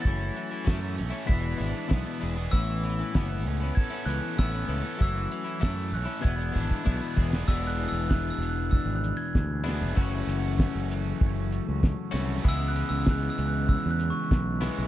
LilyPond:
<<
  \new Staff \with { instrumentName = "Glockenspiel" } { \time 4/4 \key fis \minor \tempo 4 = 97 a'''2 b'''2 | e'''2 gis'''8 fis'''8 e'''4 | e'''4 e'''8 fis'''8 gis'''4. r8 | \tuplet 3/2 { e'''8 fis'''8 e'''8 fis'''8 e'''8 fis'''8 e'''8 fis'''8 gis'''8~ } gis'''4~ |
gis'''4. r2 r8 | \tuplet 3/2 { e'''8 fis'''8 e'''8 fis'''8 e'''8 fis'''8 e'''8 fis'''8 cis'''8~ } cis'''4 | }
  \new Staff \with { instrumentName = "Overdriven electric guitar" } { \time 4/4 \key fis \minor e8 e8 a8 cis'8 e8 d'8 b8 gis'8 | e8 e8 b8 cis'8 a'8 cis'8 b8 a'8 | e8 e8 a8 cis'8 b8 d'8 b8 gis'8 | <b d' gis'>2.~ <b d' gis'>8 <b d' gis'>8 |
<a cis' fis'>2.~ <a cis' fis'>8 <a cis' fis'>8 | <e gis cis' gis'>2.~ <e gis cis' gis'>8 <e gis cis' gis'>8 | }
  \new Staff \with { instrumentName = "Clean electric guitar" } { \time 4/4 \key fis \minor <fis a cis' e'>8. <a cis' e'>16 <fis a cis' e'>16 <a cis' e'>8 <a cis' e'>16 <e, b, e gis d' e'>16 <e gis d' e'>16 <e gis d' e'>8 <e, b, e gis d' e'>16 <e gis d' e'>16 <e gis d' e'>16 <e gis d' e'>16 | <a, e b cis' e'>8. <b cis' e'>16 <a, e b cis' e'>16 <b cis' e'>8 <b cis' e'>8 <b cis' e'>16 <e b cis' e'>8 <a, e b cis' e'>16 <b cis' e'>16 <e b cis' e'>16 <b cis' e'>16 | <fis a cis' e'>8. <a cis' e'>16 <fis a cis' e'>16 <a cis' e'>8 <a cis' e'>16 <e, b, e gis d' e'>16 <e gis d' e'>16 <e gis d' e'>8 <e, b, e gis d' e'>16 <e gis d' e'>16 <e gis d' e'>16 <e gis d' e'>16 | <e, b, e gis d' e'>2.~ <e, b, e gis d' e'>8 <e, b, e gis d' e'>8 |
<fis, cis e a cis' fis'>2.~ <fis, cis e a cis' fis'>8 <fis, cis e a cis' fis'>8 | <cis e gis b e'>2.~ <cis e gis b e'>8 <cis e gis b e'>8 | }
  \new Staff \with { instrumentName = "Fingered electric bass" } { \clef bass \time 4/4 \key fis \minor fis,,8 r8 fis,8 b,,16 r16 e,,8 gis,,16 r16 b,,16 r16 e,,8 | a,,4 fis,,8 cis,8 r8 cis,16 r16 a,,8 cis,16 r16 | fis,,8 r8 fis,8 b,,16 r16 e,,8 gis,,16 r16 b,,16 r16 e,,8 | e,,8. e,,8. e,,8. gis,,8 r16 d,8. f,,16 |
fis,,8 fis,,8. fis,,8. fis,,8. cis,8 r16 c,8 | cis,8. cis,8. cis,8. e,8 r16 b,,8. b,,16 | }
  \new DrumStaff \with { instrumentName = "Drums" } \drummode { \time 4/4 bd8 hh8 <bd sn>8 hh8 bd8 hh8 <bd sn>8 hh8 | bd8 hh8 <bd sn>8 hh8 bd8 hh8 <bd sn>8 hh8 | bd8 hh8 <bd sn>8 hh8 bd8 bd16 bd16 bd8 bd16 sn16 | <cymc bd>8 hh8 <bd sn>8 hh8 bd8 hh8 <bd sn>8 <hh sn>8 |
bd8 hh8 <bd sn>8 hh8 bd8 hh8 <bd sn>8 <hh sn>8 | bd8 hh8 <bd sn>8 hh8 bd8 hh8 <bd sn>8 <hh sn>8 | }
>>